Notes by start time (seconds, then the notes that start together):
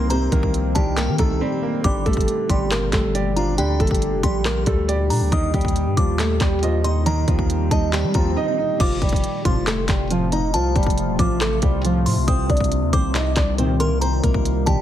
Already playing: C2 A#2 C3 D#3 A#3 C4 G4
0.10 C3 C4 C5 A#5, closed hi-hat
0.32 C2 D#3 A#3 A#4, kick, closed hi-hat
0.43 kick
0.54 closed hi-hat
0.75 C2 D#3 G3 G4 A5, kick, closed hi-hat
0.97 A#3 A#4 G5, clap, closed hi-hat
1.08 D#3
1.18 C2 D#3 A3 A4 A#5, kick, closed hi-hat
1.41 G3 C4 G4
1.63 A#3
1.84 G1 D3 G3 G4 D6, kick, closed hi-hat
2.06 G1 G3 A3 A4, kick, closed hi-hat
2.13 kick, closed hi-hat
2.21 closed hi-hat
2.28 closed hi-hat
2.49 G1 G3 G4 C6, kick, closed hi-hat
2.71 A#3 A#4, clap, closed hi-hat
2.92 G1 G3 A3 A4, kick, clap, closed hi-hat
3.15 G3 G4 D5, closed hi-hat
3.36 F3 D4 F4 A#5, closed hi-hat
3.58 D2 D3 G3 G4 G5, closed hi-hat
3.80 G1 G3 A3 A4, kick, closed hi-hat
3.87 kick, closed hi-hat
3.95 closed hi-hat
4.02 closed hi-hat
4.13 F1
4.23 A#1 G3 G4 C6, kick, closed hi-hat
4.45 A#3 A#4, clap, closed hi-hat
4.66 D2 G3 A3 A4, kick, closed hi-hat
4.88 G3 G4 D5, closed hi-hat
5.10 A#2 D4 A#5, open hi-hat
5.21 D2
5.32 D#2 D#3 D#4 D#5 D#6, kick, closed hi-hat
5.54 D#2 G3 G4, kick, closed hi-hat
5.61 kick, closed hi-hat
5.68 closed hi-hat
5.76 closed hi-hat
5.86 G2
5.97 D#2 F3 G3 F4 D6, kick, closed hi-hat
6.19 A3 A4, clap, closed hi-hat
6.40 D#2 G3 G4, kick, clap, closed hi-hat
6.62 F3 F4 D#5, closed hi-hat
6.84 D#4 D#5 C6, closed hi-hat
7.06 D#3 D#4 D#5 A#5, closed hi-hat, swell
7.28 D#2 F3 G3 F4, kick, closed hi-hat
7.39 kick
7.50 closed hi-hat
7.71 D#2 G3 D#4 D#5 A5, kick, closed hi-hat
7.93 G3 G4 G5, clap, closed hi-hat
8.04 G3
8.14 D#2 F3 G3 F4 A#5, kick, closed hi-hat
8.36 D#4 D#5
8.58 D#4
8.80 F1 C3 F3 A3 F4 D6, kick, closed hi-hat, crash
9.02 F1 G3 G4, kick, closed hi-hat
9.09 kick, closed hi-hat
9.16 closed hi-hat
9.24 closed hi-hat
9.45 F1 A2 C3 F3 F4 C6, kick, closed hi-hat
9.67 A3 A4, clap, closed hi-hat
9.88 F1 G3 G4, kick, clap, closed hi-hat
10.10 A2 C3 F3 F4, closed hi-hat
10.32 D#4 D#5 A#5, closed hi-hat
10.54 C2 F3 F4 A5, closed hi-hat
10.76 F1 G3 G4, kick, closed hi-hat
10.83 kick, closed hi-hat
10.90 closed hi-hat
10.98 closed hi-hat
11.08 D#1
11.19 A1 A2 C3 F3 F4 D6, kick, closed hi-hat
11.41 A3 A4, clap, closed hi-hat
11.62 C2 G3 G4, kick, closed hi-hat
11.84 A2 C3 F3 F4, closed hi-hat
12.06 A2 C6, open hi-hat
12.17 C2
12.28 C2 A#2 D#3 G3 C4 C5 D#6, kick, closed hi-hat
12.50 C2 D4 D5, kick, closed hi-hat
12.57 kick, closed hi-hat
12.64 closed hi-hat
12.72 closed hi-hat
12.82 D#2
12.93 C2 A#2 C3 D#3 C4 C5 D6, kick, closed hi-hat
13.15 D#4 D#5, clap, closed hi-hat
13.36 C2 D4 D5, kick, clap, closed hi-hat
13.58 A#2 C3 D#3 C4 C5, closed hi-hat
13.80 A#3 A#4 C6, closed hi-hat
14.01 C4 C5 A#5, closed hi-hat
14.23 C2 A#3 A#4, kick, closed hi-hat
14.34 kick
14.45 closed hi-hat
14.66 C2 A#2 C3 D#3 G3 G4 A5, kick, closed hi-hat